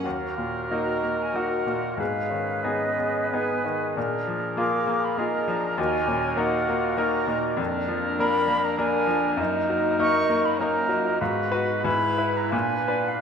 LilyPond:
<<
  \new Staff \with { instrumentName = "Flute" } { \time 3/4 \key ees \minor \tempo 4 = 98 r4 bes''8. aes''16 ges''4 | f''4 ees''4 aes''4 | r4 d'''8. ces'''16 bes''4 | aes''4 ges''4 bes''4 |
r4 ces'''8. bes''16 aes''4 | r4 des'''8. ces'''16 bes''4 | r4 b''8. bes''16 aes''8. f''16 | }
  \new Staff \with { instrumentName = "Oboe" } { \time 3/4 \key ees \minor bes'2. | ces''2. | bes'2.~ | bes'2. |
bes'2 bes'4 | bes'2 bes'4 | ces''4 b'4 ces''4 | }
  \new Staff \with { instrumentName = "Clarinet" } { \time 3/4 \key ees \minor ges'2. | aes'2.~ | aes'2. | ges'2. |
d'2 d'4 | ees'2 ees'4 | ges'4 e'4 d'4 | }
  \new Staff \with { instrumentName = "Bassoon" } { \time 3/4 \key ees \minor ges'8 f'8 ees'4 ges'8 f'8 | ees'8 des'4. ces'8 ees'8 | d'4 f'4 ees'8 d'8 | ees'8 des'8 ees'8 f'8 ges'8 ees'8 |
d'8 r8 d'4 bes8 d'8 | ees'2 des'8 ees'8 | f'8 ees'8 e'4 f'4 | }
  \new Staff \with { instrumentName = "French horn section" } { \time 3/4 \key ees \minor << { ges'8 r2 r8 | aes'8 r2 r8 | aes'8 r2 r8 | ges'8 r2 r8 |
d'2 d'4 | ees'2 ees'8 f'8 | ges'4 e'4 d'4 | } \\ { bes8 r2 r8 | ces'8 r2 r8 | bes8 r2 r8 | bes8 r2 r8 |
bes2 bes4 | bes2 bes4 | ces'4 b4 ces'4 | } >> }
  \new Staff \with { instrumentName = "Grand piano" } { \time 3/4 \key ees \minor ees,8 bes,8 <bes ees' ges'>8 bes8 <bes ees' ges'>8 bes,8 | aes,8 ees8 <ces' ees' aes'>8 ces'8 <ces' ees' aes'>8 ees8 | bes,8 f8 <bes f' aes'>8 bes8 <bes f' aes'>8 f8 | ees,8 bes,8 <bes ees' bes'>8 bes8 <bes ees' bes'>8 bes,8 |
f,8 f8 <bes d' bes'>8 bes8 <bes d' bes'>8 f8 | ges,8 ges8 <bes ees' bes'>8 bes8 <bes ees' bes'>8 ges8 | aes,8 <ges' ces''>8 gis,8 <e' b'>8 bes,8 <d' ces''>8 | }
>>